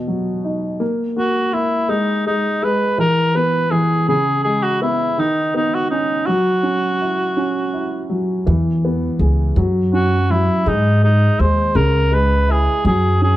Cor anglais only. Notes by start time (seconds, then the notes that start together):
1.19 F#4
1.53 E4
1.90 D#4
2.27 D#4
2.64 B4
3.00 A#4
3.35 B4
3.71 G#4
4.09 G#4
4.43 G#4
4.62 F#4
4.82 E4
5.19 D#4
5.56 D#4
5.74 F#4
5.90 D#4
6.26 F#4
9.94 F#4
10.31 E4
10.68 D#4
11.04 D#4
11.40 C5
11.75 A#4
12.13 B4
12.51 G#4
12.87 G#4
13.23 G#4